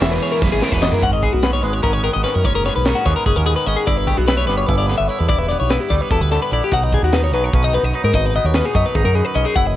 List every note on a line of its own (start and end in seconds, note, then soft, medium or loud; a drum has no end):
0.00 0.17 E1 medium
0.00 0.61 E2 medium
0.00 0.40 E3 medium
0.00 1.03 E3 medium
0.00 0.41 G#3 medium
0.00 0.42 B3 medium
0.00 0.21 C#4 medium
0.00 0.43 E4 medium
0.00 0.12 E5 medium
0.00 snare loud
0.00 closed hi-hat medium
0.12 0.22 B4 medium
0.22 1.01 C#4 medium
0.22 0.32 C#5 medium
0.22 closed hi-hat medium
0.32 0.42 A#4 medium
0.42 0.50 E1 medium
0.42 0.80 E3 medium
0.42 0.62 G#3 medium
0.42 0.61 B3 medium
0.42 0.60 E4 medium
0.42 0.52 B4 medium
0.42 kick loud
0.42 high tom soft
0.52 0.60 G#1 medium
0.52 0.62 G#4 medium
0.61 0.81 E2 medium
0.61 0.82 G#3 soft
0.61 0.82 B3 medium
0.61 0.83 E4 medium
0.61 0.72 A#4 medium
0.61 snare medium
0.72 0.88 E1 medium
0.72 0.82 B4 medium
0.72 kick medium
0.82 1.02 F#2 medium
0.82 1.01 E3 medium
0.82 1.02 G#3 medium
0.82 1.02 B3 medium
0.82 1.02 E4 medium
0.82 0.92 D#5 medium
0.82 snare medium
0.92 1.03 A#4 medium
0.92 floor tom medium
1.02 1.27 G#1 medium
1.02 2.42 G#2 medium
1.02 1.42 C#4 soft
1.02 1.13 F#5 medium
1.02 kick medium
1.02 closed hi-hat medium
1.13 1.23 D#5 medium
1.22 1.62 B3 medium
1.22 1.33 G#4 medium
1.22 kick medium
1.22 closed hi-hat medium
1.33 1.65 B1 medium
1.33 1.43 F#4 medium
1.43 1.81 C#4 soft
1.43 1.53 B4 medium
1.43 snare medium
1.43 closed hi-hat medium
1.53 1.63 C#5 medium
1.62 1.80 G#1 medium
1.62 2.42 G#3 medium
1.62 2.03 B3 soft
1.62 1.73 B4 medium
1.62 closed hi-hat medium
1.73 1.83 C#5 medium
1.82 2.08 G#1 medium
1.82 2.23 C#4 medium
1.82 1.93 A#4 medium
1.82 kick medium
1.82 closed hi-hat medium
1.93 2.03 C#5 medium
2.03 2.42 D#3 medium
2.03 2.48 B3 medium
2.03 2.13 A#4 medium
2.03 closed hi-hat medium
2.14 2.23 G#1 medium
2.14 2.24 D#5 medium
2.24 2.44 C#4 medium
2.24 2.34 B4 medium
2.24 snare soft
2.24 closed hi-hat medium
2.34 2.43 F#2 medium
2.34 2.45 A#4 medium
2.44 2.69 F#1 medium
2.44 3.84 G#2 medium
2.44 2.85 C#4 medium
2.44 2.55 C#5 medium
2.44 kick medium
2.44 closed hi-hat medium
2.55 2.65 A#4 medium
2.65 3.06 B3 soft
2.65 2.75 C#5 medium
2.65 snare soft
2.65 closed hi-hat medium
2.76 2.92 B1 medium
2.76 2.86 B4 medium
2.85 3.26 C#4 medium
2.85 2.96 A#4 medium
2.85 snare medium
2.85 closed hi-hat medium
2.95 3.06 F#4 medium
3.06 3.14 D#2 medium
3.06 3.85 G#3 medium
3.06 3.46 B3 medium
3.06 3.16 C#5 medium
3.06 kick soft
3.06 snare soft
3.06 closed hi-hat medium
3.16 3.26 A#4 medium
3.26 3.34 F#1 medium
3.26 3.66 C#4 medium
3.26 3.36 G#4 medium
3.26 kick medium
3.26 closed hi-hat medium
3.36 3.53 D#2 medium
3.36 3.46 A#4 medium
3.46 3.85 D#3 medium
3.46 4.06 B3 medium
3.46 3.56 G#4 medium
3.46 closed hi-hat soft
3.56 3.67 B4 medium
3.67 3.75 G#1 medium
3.67 3.87 C#4 medium
3.67 3.77 D#5 medium
3.67 closed hi-hat medium
3.77 3.87 G#4 medium
3.87 4.12 G1 medium
3.87 5.27 G2 medium
3.87 4.28 E4 medium
3.87 3.98 D5 medium
3.87 kick medium
3.87 closed hi-hat medium
3.98 4.08 B4 medium
4.07 4.17 A3 medium
4.07 4.17 G4 medium
4.07 kick medium
4.07 closed hi-hat medium
4.17 4.48 B1 medium
4.17 4.47 B3 soft
4.17 4.28 F#4 medium
4.28 4.67 E4 medium
4.28 4.37 B4 medium
4.28 snare medium
4.28 closed hi-hat medium
4.38 4.47 C#5 medium
4.47 4.64 G1 medium
4.47 5.27 G3 medium
4.47 4.89 B3 medium
4.47 4.57 B4 medium
4.47 snare soft
4.47 closed hi-hat soft
4.58 4.67 C#5 medium
4.67 4.93 G1 loud
4.67 5.09 E4 medium
4.67 4.77 B4 medium
4.67 kick medium
4.67 closed hi-hat medium
4.78 4.87 D5 soft
4.87 5.27 D3 medium
4.87 5.51 B3 soft
4.87 4.97 B4 medium
4.87 snare soft
4.87 closed hi-hat medium
4.98 5.07 G1 medium
4.98 5.08 E5 medium
5.08 5.28 E4 medium
5.08 5.19 C#5 medium
5.08 closed hi-hat medium
5.19 5.28 E2 medium
5.19 5.28 B4 medium
5.29 5.53 E1 medium
5.29 6.69 G2 medium
5.29 5.70 E4 medium
5.29 5.39 D5 medium
5.29 kick medium
5.29 closed hi-hat medium
5.39 5.48 B4 medium
5.49 5.90 B3 soft
5.49 5.59 D5 medium
5.49 closed hi-hat medium
5.60 5.77 B1 medium
5.60 5.70 C#5 medium
5.70 6.11 E4 medium
5.70 5.80 B4 medium
5.70 snare medium
5.70 closed hi-hat medium
5.80 5.91 G4 medium
5.90 5.99 D2 medium
5.90 6.69 G3 medium
5.90 6.02 A3 soft
5.90 6.01 D5 medium
5.90 kick medium
5.90 snare soft
5.90 closed hi-hat medium
6.01 6.31 B3 soft
6.01 6.11 B4 medium
6.10 6.19 E1 medium
6.10 6.52 E4 medium
6.10 6.21 A4 medium
6.10 kick medium
6.10 closed hi-hat medium
6.21 6.37 D2 medium
6.21 6.31 B4 medium
6.31 6.70 D3 medium
6.31 6.42 A3 soft
6.31 6.42 A4 medium
6.31 snare soft
6.31 closed hi-hat medium
6.42 6.72 B3 soft
6.42 6.52 B4 medium
6.52 6.60 A#1 medium
6.52 6.70 E4 medium
6.52 6.63 D5 medium
6.52 closed hi-hat medium
6.64 6.73 G4 medium
6.72 6.96 B1 medium
6.72 7.74 B2 medium
6.72 7.14 D#4 medium
6.72 6.84 F#5 medium
6.72 kick medium
6.72 closed hi-hat medium
6.84 6.93 D#5 medium
6.93 7.35 B3 medium
6.93 7.03 G#4 medium
6.93 kick medium
6.93 closed hi-hat medium
7.03 7.34 D#2 medium
7.03 7.13 F#4 medium
7.13 7.54 D#4 medium
7.13 7.23 B4 medium
7.13 snare medium
7.13 closed hi-hat medium
7.24 7.33 C#5 medium
7.33 7.49 B1 medium
7.33 8.74 F#3 medium
7.33 7.75 B3 medium
7.33 7.44 B4 medium
7.33 closed hi-hat soft
7.44 7.55 C#5 medium
7.53 7.77 B1 medium
7.53 7.64 C#4 medium
7.53 7.64 B4 medium
7.53 kick loud
7.53 closed hi-hat medium
7.64 7.94 D#4 soft
7.64 7.74 D#5 medium
7.73 8.13 F#2 medium
7.73 8.13 B3 medium
7.73 7.84 B4 medium
7.73 closed hi-hat medium
7.83 7.91 B1 medium
7.83 7.94 D#5 medium
7.94 8.12 D#4 medium
7.94 8.04 B4 medium
7.94 closed hi-hat medium
8.04 8.12 G#2 medium
8.04 8.14 A#4 medium
8.13 8.38 G#1 medium
8.13 9.16 B2 medium
8.13 8.54 D#4 medium
8.13 8.26 D#5 medium
8.13 kick medium
8.13 closed hi-hat medium
8.26 8.35 B4 medium
8.34 8.73 B3 medium
8.34 8.46 D#5 medium
8.34 closed hi-hat medium
8.44 8.60 D#2 medium
8.44 8.55 C#5 medium
8.54 8.65 C#4 medium
8.54 8.65 B4 medium
8.54 snare medium
8.54 closed hi-hat medium
8.65 8.95 D#4 soft
8.65 8.75 G#4 medium
8.74 8.83 F#2 medium
8.74 9.60 F#3 medium
8.74 9.14 B3 soft
8.74 8.85 D#5 medium
8.74 kick medium
8.74 closed hi-hat soft
8.86 8.95 B4 medium
8.95 9.03 G#1 medium
8.95 9.34 D#4 medium
8.95 9.05 G#4 medium
8.95 kick medium
8.95 closed hi-hat medium
9.04 9.21 F#2 medium
9.04 9.15 A#4 medium
9.14 9.53 F#2 medium
9.14 9.53 B3 medium
9.14 9.25 G#4 medium
9.14 closed hi-hat medium
9.25 9.35 B4 medium
9.35 9.44 B1 medium
9.35 9.45 C#4 medium
9.35 9.46 D#5 medium
9.35 closed hi-hat medium
9.45 9.56 D#4 soft
9.45 9.56 G#4 medium
9.55 9.76 F#1 medium
9.55 9.76 F#2 medium
9.55 9.76 E4 medium
9.55 9.67 F#5 medium
9.55 kick loud
9.55 closed hi-hat medium
9.67 9.76 D#5 medium